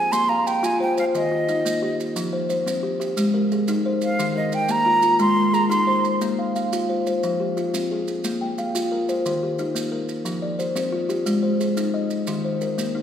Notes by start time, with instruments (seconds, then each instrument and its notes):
Already playing: kalimba G#4, flute G#5
0.12 kalimba A#3, flute C6, maracas
0.29 kalimba F5, flute A#5
0.47 flute G5, maracas
0.63 kalimba F4, flute G#5, maracas
0.80 kalimba C5, flute G5
0.97 kalimba C5, flute F5, maracas
1.15 kalimba D#3, flute D#5, maracas
1.32 kalimba F4
1.49 kalimba D#4, maracas
1.65 kalimba A#3, maracas
1.82 kalimba G4
2.00 maracas
2.16 kalimba F3, maracas
2.33 kalimba C5
2.49 kalimba C5, maracas
2.66 kalimba C4, maracas
2.83 kalimba G4
3.00 kalimba G4, maracas
3.17 kalimba G#3, maracas
3.34 kalimba A#4
3.52 kalimba G#4, maracas
3.68 kalimba D#4, maracas
3.86 kalimba C5
4.01 flute F5, maracas
4.19 kalimba D#3, maracas
4.36 kalimba A#4, flute D#5
4.52 kalimba A#4, flute G5, maracas
4.69 kalimba A#3, flute A#5, maracas
4.86 kalimba F4
5.02 kalimba F4, maracas
5.19 kalimba G#3, flute C6, maracas
5.36 kalimba A#4
5.53 kalimba G#4, flute A#5, maracas
5.70 kalimba D#4, flute C6, maracas
5.87 kalimba C5
6.04 maracas
6.21 kalimba A#3, maracas
6.39 kalimba F5
6.55 kalimba F5, maracas
6.73 kalimba F4, maracas
6.89 kalimba C5
7.07 kalimba C5, maracas
7.23 kalimba F3, maracas
7.40 kalimba G4
7.57 kalimba F4, maracas
7.74 kalimba C4, maracas
7.91 kalimba G#4
8.08 maracas
8.24 kalimba A#3, maracas
8.41 kalimba G5
8.58 kalimba F5, maracas
8.75 kalimba F4, maracas
8.92 kalimba A#4
9.09 kalimba C5, maracas
9.26 kalimba D#3, maracas
9.43 kalimba G4
9.59 kalimba D#4, maracas
9.75 kalimba A#3, maracas
9.92 kalimba A#4
10.09 maracas
10.25 kalimba F3, maracas
10.42 kalimba D5
10.59 kalimba C5, maracas
10.76 kalimba C4, maracas
10.92 kalimba F4
11.09 kalimba G4, maracas
11.26 kalimba G#3, maracas
11.43 kalimba C5
11.60 kalimba G#4, maracas
11.77 kalimba D#4, maracas
11.94 kalimba D#5
12.10 maracas
12.27 kalimba D#3, maracas
12.45 kalimba C5
12.61 kalimba A#4, maracas
12.78 kalimba A#3, maracas
12.95 kalimba D#4